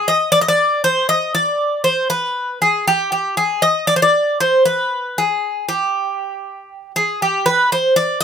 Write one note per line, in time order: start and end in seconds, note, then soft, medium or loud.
0.08 0.31 D#5 medium
0.32 0.40 D5 loud
0.41 0.48 D#5 medium
0.48 0.83 D5 medium
0.84 1.08 C5 medium
1.09 1.34 D#5 loud
1.35 1.83 D5 medium
1.84 2.09 C5 medium
2.10 2.58 B4 medium
2.62 2.86 G#4 medium
2.87 3.11 G4 medium
3.12 3.37 G4 medium
3.37 3.62 G#4 medium
3.62 3.87 D#5 medium
3.87 3.95 D5 loud
3.96 4.02 C5 medium
4.02 4.37 D5 medium
4.40 4.64 C5 medium
4.65 5.18 B4 medium
5.18 5.65 G#4 medium
5.69 6.91 G4 medium
6.96 7.21 G#4 medium
7.22 7.45 G4 medium
7.46 7.69 B4 medium
7.72 7.95 C5 medium
7.96 8.20 D5 medium
8.21 8.24 D#5 medium